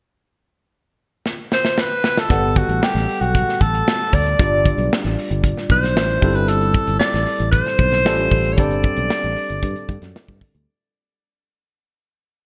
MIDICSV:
0, 0, Header, 1, 5, 480
1, 0, Start_track
1, 0, Key_signature, 1, "major"
1, 0, Tempo, 524476
1, 181, Time_signature, 4, 2, 24, 8
1, 11401, End_track
2, 0, Start_track
2, 0, Title_t, "Alto saxophone"
2, 0, Program_c, 0, 65
2, 1402, Note_on_c, 0, 72, 84
2, 1648, Note_on_c, 0, 71, 82
2, 1661, Note_off_c, 0, 72, 0
2, 2007, Note_on_c, 0, 69, 78
2, 2020, Note_off_c, 0, 71, 0
2, 2353, Note_on_c, 0, 66, 73
2, 2367, Note_off_c, 0, 69, 0
2, 2583, Note_on_c, 0, 67, 83
2, 2596, Note_off_c, 0, 66, 0
2, 2936, Note_on_c, 0, 66, 85
2, 2950, Note_off_c, 0, 67, 0
2, 3304, Note_on_c, 0, 69, 93
2, 3318, Note_off_c, 0, 66, 0
2, 3792, Note_on_c, 0, 74, 93
2, 3806, Note_off_c, 0, 69, 0
2, 4504, Note_off_c, 0, 74, 0
2, 5229, Note_on_c, 0, 72, 90
2, 5811, Note_on_c, 0, 71, 82
2, 5824, Note_off_c, 0, 72, 0
2, 5931, Note_on_c, 0, 69, 93
2, 5944, Note_off_c, 0, 71, 0
2, 6395, Note_off_c, 0, 69, 0
2, 6400, Note_on_c, 0, 74, 97
2, 6852, Note_off_c, 0, 74, 0
2, 6878, Note_on_c, 0, 72, 99
2, 7804, Note_on_c, 0, 73, 67
2, 7817, Note_off_c, 0, 72, 0
2, 7855, Note_on_c, 0, 74, 100
2, 7869, Note_off_c, 0, 73, 0
2, 9295, Note_off_c, 0, 74, 0
2, 11401, End_track
3, 0, Start_track
3, 0, Title_t, "Tine electric piano"
3, 0, Program_c, 1, 4
3, 2100, Note_on_c, 1, 55, 66
3, 2108, Note_on_c, 1, 59, 64
3, 2116, Note_on_c, 1, 78, 62
3, 2123, Note_on_c, 1, 69, 75
3, 2298, Control_c, 1, 64, 127
3, 3981, Note_off_c, 1, 55, 0
3, 3985, Note_off_c, 1, 59, 0
3, 3989, Note_off_c, 1, 78, 0
3, 3993, Note_off_c, 1, 69, 0
3, 4016, Note_on_c, 1, 55, 59
3, 4023, Note_on_c, 1, 62, 53
3, 4029, Control_c, 1, 64, 0
3, 4030, Note_on_c, 1, 65, 54
3, 4041, Note_on_c, 1, 74, 68
3, 4189, Control_c, 1, 64, 127
3, 5660, Note_off_c, 1, 55, 0
3, 5664, Note_off_c, 1, 62, 0
3, 5667, Note_off_c, 1, 65, 0
3, 5673, Note_off_c, 1, 74, 0
3, 5688, Note_on_c, 1, 55, 59
3, 5696, Note_on_c, 1, 60, 51
3, 5703, Note_on_c, 1, 64, 55
3, 5706, Control_c, 1, 64, 0
3, 5713, Note_on_c, 1, 69, 65
3, 5875, Control_c, 1, 64, 127
3, 7336, Note_off_c, 1, 55, 0
3, 7340, Note_off_c, 1, 60, 0
3, 7343, Note_off_c, 1, 64, 0
3, 7349, Note_off_c, 1, 69, 0
3, 7371, Note_on_c, 1, 55, 65
3, 7373, Note_on_c, 1, 61, 60
3, 7376, Note_on_c, 1, 65, 57
3, 7383, Note_on_c, 1, 69, 73
3, 7385, Control_c, 1, 64, 0
3, 7550, Control_c, 1, 64, 127
3, 7832, Note_off_c, 1, 55, 0
3, 7843, Note_on_c, 1, 55, 61
3, 7850, Note_on_c, 1, 60, 56
3, 7853, Note_off_c, 1, 61, 0
3, 7854, Note_off_c, 1, 65, 0
3, 7858, Note_off_c, 1, 69, 0
3, 7862, Note_on_c, 1, 62, 55
3, 7866, Control_c, 1, 64, 0
3, 7867, Note_on_c, 1, 69, 65
3, 8018, Control_c, 1, 64, 127
3, 9734, Note_off_c, 1, 55, 0
3, 9737, Note_off_c, 1, 60, 0
3, 9743, Note_off_c, 1, 62, 0
3, 9746, Note_off_c, 1, 69, 0
3, 9787, Control_c, 1, 64, 0
3, 11401, End_track
4, 0, Start_track
4, 0, Title_t, "Fretless electric bass"
4, 0, Program_c, 2, 35
4, 2105, Note_on_c, 2, 31, 98
4, 2386, Note_off_c, 2, 31, 0
4, 2459, Note_on_c, 2, 33, 80
4, 2554, Note_off_c, 2, 33, 0
4, 2697, Note_on_c, 2, 33, 85
4, 2792, Note_off_c, 2, 33, 0
4, 2936, Note_on_c, 2, 35, 75
4, 3126, Note_off_c, 2, 35, 0
4, 3301, Note_on_c, 2, 33, 88
4, 3489, Note_off_c, 2, 33, 0
4, 3778, Note_on_c, 2, 38, 83
4, 3967, Note_off_c, 2, 38, 0
4, 4021, Note_on_c, 2, 31, 90
4, 4302, Note_off_c, 2, 31, 0
4, 4371, Note_on_c, 2, 35, 76
4, 4468, Note_off_c, 2, 35, 0
4, 4617, Note_on_c, 2, 33, 76
4, 4711, Note_off_c, 2, 33, 0
4, 4856, Note_on_c, 2, 31, 79
4, 5044, Note_off_c, 2, 31, 0
4, 5214, Note_on_c, 2, 35, 85
4, 5459, Note_off_c, 2, 35, 0
4, 5459, Note_on_c, 2, 33, 94
4, 5646, Note_off_c, 2, 33, 0
4, 5694, Note_on_c, 2, 31, 103
4, 6165, Note_off_c, 2, 31, 0
4, 6291, Note_on_c, 2, 31, 80
4, 6386, Note_off_c, 2, 31, 0
4, 6533, Note_on_c, 2, 33, 78
4, 6628, Note_off_c, 2, 33, 0
4, 6770, Note_on_c, 2, 33, 90
4, 6960, Note_off_c, 2, 33, 0
4, 7130, Note_on_c, 2, 35, 81
4, 7376, Note_off_c, 2, 35, 0
4, 7376, Note_on_c, 2, 33, 93
4, 7563, Note_off_c, 2, 33, 0
4, 7607, Note_on_c, 2, 33, 82
4, 7847, Note_off_c, 2, 33, 0
4, 7847, Note_on_c, 2, 31, 101
4, 8133, Note_off_c, 2, 31, 0
4, 8212, Note_on_c, 2, 35, 81
4, 8307, Note_off_c, 2, 35, 0
4, 8456, Note_on_c, 2, 33, 80
4, 8549, Note_off_c, 2, 33, 0
4, 8694, Note_on_c, 2, 31, 83
4, 8788, Note_off_c, 2, 31, 0
4, 8812, Note_on_c, 2, 43, 88
4, 8907, Note_off_c, 2, 43, 0
4, 9048, Note_on_c, 2, 43, 93
4, 9145, Note_off_c, 2, 43, 0
4, 9168, Note_on_c, 2, 42, 86
4, 9265, Note_off_c, 2, 42, 0
4, 9414, Note_on_c, 2, 43, 85
4, 9509, Note_off_c, 2, 43, 0
4, 9651, Note_on_c, 2, 38, 83
4, 9747, Note_off_c, 2, 38, 0
4, 11401, End_track
5, 0, Start_track
5, 0, Title_t, "Drums"
5, 1150, Note_on_c, 9, 38, 54
5, 1242, Note_off_c, 9, 38, 0
5, 1389, Note_on_c, 9, 38, 66
5, 1480, Note_off_c, 9, 38, 0
5, 1507, Note_on_c, 9, 38, 63
5, 1598, Note_off_c, 9, 38, 0
5, 1626, Note_on_c, 9, 38, 79
5, 1717, Note_off_c, 9, 38, 0
5, 1867, Note_on_c, 9, 38, 85
5, 1958, Note_off_c, 9, 38, 0
5, 1990, Note_on_c, 9, 38, 84
5, 2082, Note_off_c, 9, 38, 0
5, 2106, Note_on_c, 9, 36, 94
5, 2109, Note_on_c, 9, 42, 81
5, 2197, Note_off_c, 9, 36, 0
5, 2201, Note_off_c, 9, 42, 0
5, 2343, Note_on_c, 9, 42, 70
5, 2345, Note_on_c, 9, 36, 90
5, 2434, Note_off_c, 9, 42, 0
5, 2436, Note_off_c, 9, 36, 0
5, 2465, Note_on_c, 9, 42, 48
5, 2557, Note_off_c, 9, 42, 0
5, 2588, Note_on_c, 9, 38, 96
5, 2680, Note_off_c, 9, 38, 0
5, 2713, Note_on_c, 9, 38, 30
5, 2805, Note_off_c, 9, 38, 0
5, 2828, Note_on_c, 9, 46, 68
5, 2919, Note_off_c, 9, 46, 0
5, 2951, Note_on_c, 9, 42, 48
5, 3043, Note_off_c, 9, 42, 0
5, 3064, Note_on_c, 9, 36, 81
5, 3072, Note_on_c, 9, 42, 86
5, 3156, Note_off_c, 9, 36, 0
5, 3163, Note_off_c, 9, 42, 0
5, 3194, Note_on_c, 9, 38, 32
5, 3286, Note_off_c, 9, 38, 0
5, 3303, Note_on_c, 9, 36, 81
5, 3311, Note_on_c, 9, 42, 60
5, 3395, Note_off_c, 9, 36, 0
5, 3403, Note_off_c, 9, 42, 0
5, 3427, Note_on_c, 9, 42, 50
5, 3518, Note_off_c, 9, 42, 0
5, 3549, Note_on_c, 9, 38, 97
5, 3641, Note_off_c, 9, 38, 0
5, 3780, Note_on_c, 9, 36, 77
5, 3781, Note_on_c, 9, 46, 63
5, 3872, Note_off_c, 9, 36, 0
5, 3872, Note_off_c, 9, 46, 0
5, 3903, Note_on_c, 9, 42, 45
5, 3995, Note_off_c, 9, 42, 0
5, 4022, Note_on_c, 9, 36, 96
5, 4023, Note_on_c, 9, 42, 79
5, 4113, Note_off_c, 9, 36, 0
5, 4115, Note_off_c, 9, 42, 0
5, 4261, Note_on_c, 9, 36, 87
5, 4261, Note_on_c, 9, 42, 69
5, 4352, Note_off_c, 9, 36, 0
5, 4353, Note_off_c, 9, 42, 0
5, 4380, Note_on_c, 9, 42, 48
5, 4471, Note_off_c, 9, 42, 0
5, 4511, Note_on_c, 9, 38, 96
5, 4602, Note_off_c, 9, 38, 0
5, 4624, Note_on_c, 9, 42, 33
5, 4627, Note_on_c, 9, 38, 28
5, 4715, Note_off_c, 9, 42, 0
5, 4719, Note_off_c, 9, 38, 0
5, 4744, Note_on_c, 9, 46, 71
5, 4835, Note_off_c, 9, 46, 0
5, 4861, Note_on_c, 9, 42, 50
5, 4953, Note_off_c, 9, 42, 0
5, 4976, Note_on_c, 9, 36, 84
5, 4979, Note_on_c, 9, 42, 87
5, 5068, Note_off_c, 9, 36, 0
5, 5070, Note_off_c, 9, 42, 0
5, 5102, Note_on_c, 9, 38, 32
5, 5194, Note_off_c, 9, 38, 0
5, 5215, Note_on_c, 9, 36, 78
5, 5218, Note_on_c, 9, 42, 62
5, 5306, Note_off_c, 9, 36, 0
5, 5309, Note_off_c, 9, 42, 0
5, 5339, Note_on_c, 9, 42, 52
5, 5347, Note_on_c, 9, 38, 33
5, 5430, Note_off_c, 9, 42, 0
5, 5438, Note_off_c, 9, 38, 0
5, 5462, Note_on_c, 9, 38, 100
5, 5554, Note_off_c, 9, 38, 0
5, 5693, Note_on_c, 9, 46, 67
5, 5695, Note_on_c, 9, 36, 91
5, 5785, Note_off_c, 9, 46, 0
5, 5787, Note_off_c, 9, 36, 0
5, 5815, Note_on_c, 9, 42, 46
5, 5907, Note_off_c, 9, 42, 0
5, 5933, Note_on_c, 9, 42, 82
5, 5941, Note_on_c, 9, 82, 56
5, 6024, Note_off_c, 9, 42, 0
5, 6032, Note_off_c, 9, 82, 0
5, 6052, Note_on_c, 9, 42, 31
5, 6054, Note_on_c, 9, 82, 50
5, 6144, Note_off_c, 9, 42, 0
5, 6146, Note_off_c, 9, 82, 0
5, 6170, Note_on_c, 9, 42, 69
5, 6173, Note_on_c, 9, 36, 93
5, 6261, Note_off_c, 9, 42, 0
5, 6264, Note_off_c, 9, 36, 0
5, 6289, Note_on_c, 9, 82, 43
5, 6290, Note_on_c, 9, 42, 49
5, 6380, Note_off_c, 9, 82, 0
5, 6381, Note_off_c, 9, 42, 0
5, 6401, Note_on_c, 9, 82, 63
5, 6413, Note_on_c, 9, 38, 96
5, 6493, Note_off_c, 9, 82, 0
5, 6505, Note_off_c, 9, 38, 0
5, 6532, Note_on_c, 9, 82, 42
5, 6533, Note_on_c, 9, 42, 34
5, 6537, Note_on_c, 9, 38, 30
5, 6623, Note_off_c, 9, 82, 0
5, 6625, Note_off_c, 9, 42, 0
5, 6628, Note_off_c, 9, 38, 0
5, 6648, Note_on_c, 9, 82, 42
5, 6649, Note_on_c, 9, 46, 66
5, 6739, Note_off_c, 9, 82, 0
5, 6740, Note_off_c, 9, 46, 0
5, 6769, Note_on_c, 9, 42, 50
5, 6774, Note_on_c, 9, 82, 50
5, 6861, Note_off_c, 9, 42, 0
5, 6865, Note_off_c, 9, 82, 0
5, 6887, Note_on_c, 9, 42, 88
5, 6888, Note_on_c, 9, 36, 82
5, 6894, Note_on_c, 9, 82, 65
5, 6978, Note_off_c, 9, 42, 0
5, 6980, Note_off_c, 9, 36, 0
5, 6985, Note_off_c, 9, 82, 0
5, 7011, Note_on_c, 9, 42, 31
5, 7014, Note_on_c, 9, 82, 41
5, 7015, Note_on_c, 9, 38, 32
5, 7102, Note_off_c, 9, 42, 0
5, 7106, Note_off_c, 9, 82, 0
5, 7107, Note_off_c, 9, 38, 0
5, 7129, Note_on_c, 9, 36, 83
5, 7130, Note_on_c, 9, 42, 64
5, 7134, Note_on_c, 9, 82, 42
5, 7220, Note_off_c, 9, 36, 0
5, 7222, Note_off_c, 9, 42, 0
5, 7225, Note_off_c, 9, 82, 0
5, 7246, Note_on_c, 9, 42, 49
5, 7254, Note_on_c, 9, 38, 33
5, 7256, Note_on_c, 9, 82, 50
5, 7338, Note_off_c, 9, 42, 0
5, 7346, Note_off_c, 9, 38, 0
5, 7348, Note_off_c, 9, 82, 0
5, 7370, Note_on_c, 9, 82, 51
5, 7376, Note_on_c, 9, 38, 103
5, 7461, Note_off_c, 9, 82, 0
5, 7468, Note_off_c, 9, 38, 0
5, 7488, Note_on_c, 9, 42, 32
5, 7494, Note_on_c, 9, 82, 44
5, 7579, Note_off_c, 9, 42, 0
5, 7585, Note_off_c, 9, 82, 0
5, 7606, Note_on_c, 9, 82, 50
5, 7609, Note_on_c, 9, 46, 66
5, 7610, Note_on_c, 9, 36, 81
5, 7697, Note_off_c, 9, 82, 0
5, 7701, Note_off_c, 9, 36, 0
5, 7701, Note_off_c, 9, 46, 0
5, 7729, Note_on_c, 9, 82, 44
5, 7730, Note_on_c, 9, 42, 47
5, 7820, Note_off_c, 9, 82, 0
5, 7821, Note_off_c, 9, 42, 0
5, 7847, Note_on_c, 9, 42, 80
5, 7851, Note_on_c, 9, 36, 98
5, 7852, Note_on_c, 9, 82, 60
5, 7938, Note_off_c, 9, 42, 0
5, 7943, Note_off_c, 9, 36, 0
5, 7943, Note_off_c, 9, 82, 0
5, 7968, Note_on_c, 9, 82, 52
5, 7970, Note_on_c, 9, 42, 33
5, 8060, Note_off_c, 9, 82, 0
5, 8062, Note_off_c, 9, 42, 0
5, 8086, Note_on_c, 9, 42, 68
5, 8090, Note_on_c, 9, 36, 90
5, 8177, Note_off_c, 9, 42, 0
5, 8182, Note_off_c, 9, 36, 0
5, 8205, Note_on_c, 9, 42, 49
5, 8205, Note_on_c, 9, 82, 42
5, 8296, Note_off_c, 9, 42, 0
5, 8296, Note_off_c, 9, 82, 0
5, 8316, Note_on_c, 9, 82, 67
5, 8332, Note_on_c, 9, 38, 98
5, 8407, Note_off_c, 9, 82, 0
5, 8423, Note_off_c, 9, 38, 0
5, 8446, Note_on_c, 9, 82, 43
5, 8452, Note_on_c, 9, 42, 33
5, 8537, Note_off_c, 9, 82, 0
5, 8543, Note_off_c, 9, 42, 0
5, 8566, Note_on_c, 9, 82, 41
5, 8570, Note_on_c, 9, 46, 70
5, 8657, Note_off_c, 9, 82, 0
5, 8661, Note_off_c, 9, 46, 0
5, 8690, Note_on_c, 9, 82, 49
5, 8692, Note_on_c, 9, 42, 50
5, 8781, Note_off_c, 9, 82, 0
5, 8783, Note_off_c, 9, 42, 0
5, 8811, Note_on_c, 9, 36, 84
5, 8813, Note_on_c, 9, 42, 85
5, 8813, Note_on_c, 9, 82, 64
5, 8902, Note_off_c, 9, 36, 0
5, 8904, Note_off_c, 9, 42, 0
5, 8904, Note_off_c, 9, 82, 0
5, 8931, Note_on_c, 9, 42, 33
5, 8932, Note_on_c, 9, 82, 41
5, 9022, Note_off_c, 9, 42, 0
5, 9024, Note_off_c, 9, 82, 0
5, 9049, Note_on_c, 9, 36, 77
5, 9053, Note_on_c, 9, 42, 60
5, 9057, Note_on_c, 9, 82, 45
5, 9141, Note_off_c, 9, 36, 0
5, 9144, Note_off_c, 9, 42, 0
5, 9149, Note_off_c, 9, 82, 0
5, 9169, Note_on_c, 9, 42, 53
5, 9172, Note_on_c, 9, 82, 52
5, 9178, Note_on_c, 9, 38, 33
5, 9261, Note_off_c, 9, 42, 0
5, 9263, Note_off_c, 9, 82, 0
5, 9269, Note_off_c, 9, 38, 0
5, 9296, Note_on_c, 9, 82, 53
5, 9298, Note_on_c, 9, 38, 98
5, 9388, Note_off_c, 9, 82, 0
5, 9390, Note_off_c, 9, 38, 0
5, 9409, Note_on_c, 9, 42, 32
5, 9413, Note_on_c, 9, 36, 84
5, 9421, Note_on_c, 9, 82, 46
5, 9500, Note_off_c, 9, 42, 0
5, 9504, Note_off_c, 9, 36, 0
5, 9513, Note_off_c, 9, 82, 0
5, 9529, Note_on_c, 9, 46, 66
5, 9530, Note_on_c, 9, 36, 83
5, 9537, Note_on_c, 9, 82, 48
5, 9620, Note_off_c, 9, 46, 0
5, 9621, Note_off_c, 9, 36, 0
5, 9629, Note_off_c, 9, 82, 0
5, 9653, Note_on_c, 9, 42, 43
5, 9664, Note_on_c, 9, 82, 42
5, 9745, Note_off_c, 9, 42, 0
5, 9755, Note_off_c, 9, 82, 0
5, 11401, End_track
0, 0, End_of_file